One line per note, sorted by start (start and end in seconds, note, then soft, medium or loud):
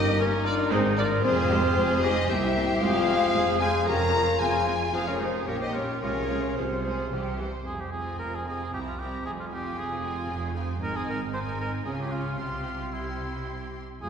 0.00 0.11 G1 medium
0.00 0.11 G2 medium
0.00 0.21 D#4 medium
0.00 1.25 D#4 medium
0.00 0.19 G4 medium
0.00 0.19 A#4 medium
0.00 0.19 D#5 medium
0.00 0.20 D#5 loud
0.19 0.31 A#3 medium
0.19 0.47 C#4 medium
0.19 0.33 G4 medium
0.19 0.26 A#4 medium
0.19 0.46 A#4 medium
0.45 0.72 D4 medium
0.45 0.73 F4 medium
0.45 0.72 A#4 medium
0.45 0.71 D5 medium
0.45 0.54 D5 loud
0.71 1.16 G#1 medium
0.71 1.16 G#2 medium
0.71 0.97 G#3 medium
0.71 0.98 C4 medium
0.71 0.97 C4 medium
0.71 1.00 D#4 medium
0.71 0.98 G#4 medium
0.71 0.80 C5 medium
0.71 0.97 C5 medium
0.97 1.09 D4 medium
0.97 1.24 F4 medium
0.97 1.23 A#4 medium
0.97 1.23 D5 medium
0.97 1.06 D5 medium
1.22 1.71 F1 medium
1.22 1.71 F2 medium
1.22 1.32 G#3 medium
1.22 2.00 C4 medium
1.22 1.33 C4 medium
1.22 2.06 F4 loud
1.22 2.01 G#4 medium
1.22 1.50 G#4 medium
1.22 2.06 C5 medium
1.22 2.02 C5 loud
1.50 1.59 G#3 medium
1.50 1.59 C4 medium
1.50 1.77 G4 medium
1.76 2.23 F1 medium
1.76 2.23 F2 medium
1.76 1.85 G#3 medium
1.76 1.85 C4 medium
1.76 2.29 G#4 medium
2.01 2.12 G#3 medium
2.01 2.12 C4 medium
2.01 2.13 D#4 medium
2.01 2.30 G4 medium
2.01 2.29 C5 medium
2.01 2.29 D#5 loud
2.01 2.28 D#5 medium
2.27 2.76 C2 medium
2.27 2.38 A#3 medium
2.27 2.38 C4 medium
2.27 2.80 E4 medium
2.27 3.35 G4 medium
2.27 2.82 G4 medium
2.27 2.81 C5 medium
2.27 2.83 E5 medium
2.27 2.82 E5 medium
2.56 2.64 A#3 medium
2.56 2.64 C4 medium
2.81 3.28 F1 medium
2.81 3.28 F2 medium
2.81 2.90 G#3 medium
2.81 2.90 C4 medium
2.81 3.59 F4 medium
2.81 3.63 G#4 medium
2.81 3.60 C5 medium
2.81 3.63 F5 loud
2.81 3.59 F5 loud
3.08 3.17 G#3 medium
3.08 3.16 C4 medium
3.34 3.81 F1 medium
3.34 3.81 F2 medium
3.34 3.43 G#3 medium
3.34 3.43 C4 medium
3.34 3.87 G#4 medium
3.61 3.69 G#3 medium
3.61 3.69 C4 medium
3.61 3.87 G#4 medium
3.61 3.88 C5 medium
3.61 3.87 F5 medium
3.61 3.86 G#5 medium
3.61 3.87 G#5 medium
3.87 4.34 F1 medium
3.87 4.34 F2 medium
3.87 3.96 F3 medium
3.87 3.96 C#4 medium
3.87 3.96 G4 medium
3.87 4.41 A#4 medium
3.87 4.42 C#5 medium
3.87 4.40 F5 medium
3.87 4.42 A#5 medium
3.87 4.39 A#5 loud
4.15 4.23 F3 medium
4.15 4.23 C#4 medium
4.15 4.93 F4 medium
4.39 4.87 F1 medium
4.39 4.88 F2 medium
4.39 4.49 F3 medium
4.39 4.49 C4 medium
4.39 4.92 G#4 medium
4.39 4.75 C5 medium
4.39 4.75 F5 medium
4.39 4.70 G#5 medium
4.39 4.95 G#5 medium
4.67 4.75 F3 medium
4.67 4.75 C4 medium
4.92 5.41 F1 medium
4.92 5.42 F2 medium
4.92 5.02 F3 soft
4.92 5.02 C4 soft
4.92 4.99 F4 medium
4.92 5.06 G#4 medium
4.92 5.48 G#4 medium
4.92 5.09 C5 medium
4.92 5.10 F5 medium
4.92 5.08 F5 medium
5.07 5.13 C#4 medium
5.07 5.21 F4 medium
5.07 5.21 A#4 medium
5.07 5.21 C#5 medium
5.07 5.22 C#5 medium
5.20 5.28 F3 medium
5.20 5.47 C4 medium
5.20 5.29 C4 medium
5.20 5.47 D#4 medium
5.20 5.33 G#4 soft
5.20 5.48 C5 medium
5.20 5.49 C5 medium
5.46 5.96 A#1 medium
5.46 5.96 A#2 medium
5.46 5.56 G3 soft
5.46 5.56 A#3 soft
5.46 5.61 C#4 medium
5.46 5.59 G4 medium
5.46 6.03 G4 medium
5.46 5.54 A#4 medium
5.46 5.61 C#5 medium
5.59 5.74 D#4 medium
5.59 5.75 G4 medium
5.59 5.67 C5 medium
5.59 5.67 D#5 medium
5.59 5.75 D#5 medium
5.73 5.83 G3 soft
5.73 5.83 A#3 soft
5.73 6.00 C#4 medium
5.73 6.02 F4 medium
5.73 5.86 A#4 medium
5.73 6.01 C#5 medium
5.73 5.82 C#5 medium
6.01 6.51 C2 medium
6.01 6.51 C3 soft
6.01 6.11 F3 soft
6.01 6.11 G#3 medium
6.01 6.56 C#4 medium
6.01 6.56 F4 medium
6.01 6.52 G#4 medium
6.01 6.56 A#4 medium
6.01 6.56 C#5 medium
6.01 6.57 C#5 medium
6.29 6.37 F3 soft
6.29 6.37 G#3 soft
6.56 7.06 C2 medium
6.56 7.06 C3 soft
6.56 6.65 F3 soft
6.56 6.65 G#3 soft
6.56 7.37 C4 medium
6.56 7.38 F4 soft
6.56 6.66 F4 medium
6.56 7.38 G#4 soft
6.56 7.40 C5 medium
6.56 7.38 C5 soft
6.84 6.93 F3 soft
6.84 6.92 G#3 soft
6.84 7.12 G#4 medium
7.12 7.60 C2 soft
7.12 7.60 C3 medium
7.12 7.21 E3 soft
7.12 7.20 G3 soft
7.12 7.39 G4 medium
7.40 7.48 E3 soft
7.40 7.48 G3 soft
7.40 7.67 C5 medium
7.65 8.14 F1 soft
7.65 8.14 F2 soft
7.65 7.82 G#4 medium
7.80 7.91 G4 soft
7.92 8.46 C4 soft
7.92 8.46 F4 soft
7.92 8.19 G#4 medium
7.92 8.46 G#5 soft
8.19 8.67 F1 soft
8.19 8.67 F2 soft
8.19 8.36 A#4 medium
8.35 8.47 G#4 soft
8.47 8.72 C4 soft
8.47 8.73 F4 soft
8.47 8.73 G#4 medium
8.47 8.73 G#5 soft
8.73 9.19 C2 soft
8.73 8.98 C4 soft
8.73 8.99 E4 soft
8.73 8.80 G4 medium
8.73 8.99 A#5 soft
8.87 9.01 F4 soft
8.99 9.25 C4 soft
8.99 9.25 E4 soft
8.99 9.25 G4 medium
8.99 9.25 A#5 soft
9.25 9.71 F1 medium
9.25 9.71 F2 soft
9.25 9.31 G#4 medium
9.40 9.45 F4 soft
9.51 10.02 C4 soft
9.51 10.02 F4 soft
9.51 9.78 G4 medium
9.51 10.02 G#5 soft
9.77 10.23 F1 medium
9.77 10.23 F2 medium
9.77 10.55 G#4 medium
10.03 10.54 C4 soft
10.03 10.54 F4 soft
10.03 10.54 G#5 soft
10.29 10.75 F1 medium
10.29 10.75 F2 medium
10.55 10.80 C4 medium
10.55 10.81 F4 soft
10.55 10.79 G#5 soft
10.81 11.82 G#1 medium
10.81 11.82 G#2 medium
10.81 11.30 C4 medium
10.81 11.30 D#4 medium
10.81 10.98 A#4 medium
10.81 11.29 G#5 medium
10.96 11.08 G#4 medium
11.10 11.21 A#4 medium
11.32 11.85 C4 soft
11.32 11.84 D#4 medium
11.32 11.40 C5 medium
11.32 11.84 G#5 medium
11.47 11.60 A#4 medium
11.61 11.73 A#4 medium
11.85 12.39 C#2 soft
11.85 12.39 C#3 soft
11.85 12.39 C#4 soft
11.85 12.40 F4 soft
11.85 11.91 G#4 soft
11.85 12.39 G#5 soft
12.01 12.13 G4 medium
12.12 12.39 F4 medium
12.39 13.82 C2 soft
12.39 13.82 C3 soft
12.39 12.93 C4 soft
12.39 12.95 F4 medium
12.39 12.92 G4 soft
12.39 12.92 C6 soft
12.93 13.81 C4 soft
12.93 13.76 E4 soft
12.93 13.80 G4 soft
12.93 13.80 C6 soft
14.02 14.09 F1 medium
14.02 14.09 F2 medium
14.02 14.09 G#3 soft
14.02 14.09 F4 soft
14.02 14.09 G#4 medium
14.02 14.09 G#5 soft